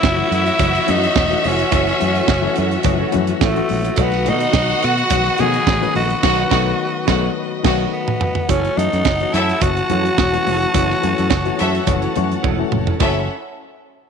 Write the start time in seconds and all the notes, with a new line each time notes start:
Already playing: E3 F#3 A3 C#4 E4 F#4 C#5 E5 F#5
0.02 F#1, muted clean electric guitar stroke, kick, snare, cowbell, high conga
0.17 E3 F#3 A3 C#4 F#4, muted clean electric guitar stroke
0.29 F#2 E4 A4 C#5, closed hi-hat
0.34 E4
0.45 muted clean electric guitar stroke, closed hi-hat
0.58 F#1 E3 F#3 A3 C#4 F#4, kick, closed hi-hat, cowbell, low conga
0.73 muted clean electric guitar stroke, closed hi-hat
0.86 F#2 E3 F#3 A3 C#4 E4 F#4 A4 C#5, closed hi-hat, muted conga, low conga
0.90 D#4
1.02 muted clean electric guitar stroke, closed hi-hat
1.16 E1, kick, snare, cowbell, high conga
1.30 E3 F#3 A3 C#4 F#4, closed hi-hat, high conga
1.43 F1 C#4 E4 A4 C#5, open hi-hat, high conga
1.59 muted clean electric guitar stroke, closed hi-hat
1.71 F#1 E3 F#3 A3 C#4 E4 F#4 A4 C#5, kick, closed hi-hat, cowbell, muted conga
1.87 muted clean electric guitar stroke, snare, closed hi-hat
2.00 F#2 E3 F#3 A3 C#4 F#4, muted clean electric guitar stroke, closed hi-hat
2.15 E4 A4 C#5, closed hi-hat
2.28 F#1, kick, snare, cowbell, high conga
2.42 E3 F#3 A3 C#4 A4
2.55 F#2 E4 A4 C#5, closed hi-hat
2.71 muted clean electric guitar stroke, closed hi-hat
2.83 F#1 E3 F#3 A3 C#4 F#4, muted clean electric guitar stroke, kick, closed hi-hat, cowbell, low conga
2.99 E4 A4 C#5
3.12 F#2 E3 F#3 A3 C#4 F#4, muted clean electric guitar stroke, closed hi-hat, muted conga, low conga
3.27 muted clean electric guitar stroke, closed hi-hat
3.41 A1 A3 E4 A4 C#5, kick, snare, cowbell, high conga
3.55 E3 F#3 A3 C#4 F#4, muted clean electric guitar stroke, closed hi-hat, high conga
3.69 A#1, muted clean electric guitar stroke, open hi-hat, high conga
3.83 E4 A4 C#5, closed hi-hat
3.96 B1 D#3 F#3 A3 B3 F#4 A4 B4 D#5 F#5, kick, closed hi-hat, cowbell, muted conga
4.01 B3
4.12 muted clean electric guitar stroke, snare, closed hi-hat
4.24 D#3 F#3 A3 B3 F#4 A4 D#5, closed hi-hat, muted conga
4.28 B2 D#4
4.39 F#4 A4 D#5, closed hi-hat
4.53 B1, muted clean electric guitar stroke, kick, snare, cowbell, high conga
4.68 D#3 F#3 A3 B3 F#4
4.80 F#4 A4 D#5, closed hi-hat
4.84 B2 F#4
4.96 muted clean electric guitar stroke, closed hi-hat
5.10 B1 D#3 F#3 A3 B3 F#4, kick, closed hi-hat, cowbell, low conga
5.24 muted clean electric guitar stroke, closed hi-hat
5.37 B2 D#3 F#3 A3 B3 F#4 G#4 A4 D#5, closed hi-hat, muted conga, low conga
5.52 muted clean electric guitar stroke, closed hi-hat
5.67 A1, muted clean electric guitar stroke, kick, snare, cowbell, high conga
5.82 D#3 F#3 A3 B3 C#4, muted clean electric guitar stroke, closed hi-hat, high conga
5.95 A#1 F#4 A4 D#5, open hi-hat, high conga
6.08 muted clean electric guitar stroke, closed hi-hat
6.22 B1 D#3 F#3 A3 B3 D#4 F#4 A4 D#5 F#5, kick, snare, crash
6.50 B1 D#3 F#3 A3 B3 F#4 A4 D#5 F#5, kick, snare
7.05 B1 D#3 F#3 A3 B3 F#4 A4 D#5 F#5, kick, snare
7.63 B1 D#3 F#3 A3 B3 F#4 A4 D#5 F#5, kick, snare, crash
7.93 B3
8.08 mid tom
8.21 floor tom
8.35 floor tom
8.48 F#1 E3 F#3 A3 C#4 E4 F#4 A4 C#5 F#5 A5, kick, closed hi-hat, cowbell, muted conga
8.63 muted clean electric guitar stroke, closed hi-hat
8.76 F#2 E3 F#3 A3 C#4 D#4 E4 F#4 A4 C#5, closed hi-hat, muted conga
8.92 F#2 E4 A4 C#5, closed hi-hat
9.05 F#1, muted clean electric guitar stroke, kick, snare, cowbell, high conga
9.20 E3 F#3 A3 C#4 F#4, muted clean electric guitar stroke, closed hi-hat
9.34 F#2 C#4 E4 A4 C#5 E5, closed hi-hat
9.48 muted clean electric guitar stroke, closed hi-hat
9.61 F#1 E3 F#3 A3 C#4 F#4, kick, closed hi-hat, cowbell
9.76 muted clean electric guitar stroke, closed hi-hat
9.89 F#2 E3 F#3 A3 C#4 E4 F#4 A4 C#5, closed hi-hat, muted conga, low conga
10.05 muted clean electric guitar stroke, closed hi-hat
10.18 E1, kick, snare, cowbell, high conga
10.32 E3 F#3 A3 C#4 F#4, muted clean electric guitar stroke, closed hi-hat
10.45 F1 E4 A4 C#5, open hi-hat, high conga
10.60 muted clean electric guitar stroke, closed hi-hat
10.73 F#1 E3 F#3 A3 C#4 E4 F#4 A4 C#5 F#5, kick, closed hi-hat, cowbell, muted conga
10.89 muted clean electric guitar stroke, snare
11.02 F#2 E3 F#3 A3 C#4 F#4, muted clean electric guitar stroke, closed hi-hat
11.16 F#2 E4 A4 C#5, closed hi-hat
11.30 F#1, kick, snare, cowbell, high conga
11.44 E3 F#3 A3 C#4 F#4, muted clean electric guitar stroke, closed hi-hat
11.57 F#2 C#4 E4 A4 C#5 E5, closed hi-hat
11.71 muted clean electric guitar stroke, closed hi-hat
11.86 F#1 E3 F#3 A3 C#4 F#4, muted clean electric guitar stroke, kick, closed hi-hat, cowbell, low conga
12.00 E4 A4 C#5, closed hi-hat
12.15 F#2 E3 F#3 A3 C#4 F#4, muted clean electric guitar stroke, closed hi-hat, muted conga, low conga
12.28 muted clean electric guitar stroke, closed hi-hat
12.43 E1 E4 A4 C#5, kick, high tom, cowbell, high conga
12.58 E3 F#3 A3 C#4 A4, muted clean electric guitar stroke
12.71 F1, muted clean electric guitar stroke, mid tom, high conga
12.86 E4 A4 C#5, floor tom
13.00 F#1 E3 F#3 A3 C#4 E4 F#4 A4 C#5 E5 F#5, kick, crash, cowbell, muted conga